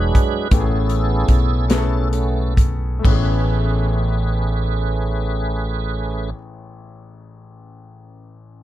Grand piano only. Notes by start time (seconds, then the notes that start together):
Already playing: E3 G#3 D4 E4 F#4
0.51 A2 A3 B3 C#4 G4
0.60 G#4
1.68 A3 B3 C#4 G#4
1.78 A4
2.99 A3 B3
3.04 A1 C#4
3.10 G#4